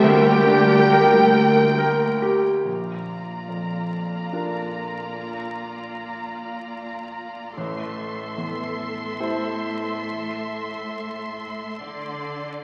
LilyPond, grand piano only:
\new Staff \with { instrumentName = "Grand piano" } { \time 3/4 \key g \minor \tempo 4 = 71 d,8 d'8 bes'8 g''8 bes'8 g'8 | \key bes \lydian bes,,4 f,4 <d' f' bes'>4~ | <d' f' bes'>2. | a,,4 e,4 <e' a' c''>4~ |
<e' a' c''>2. | }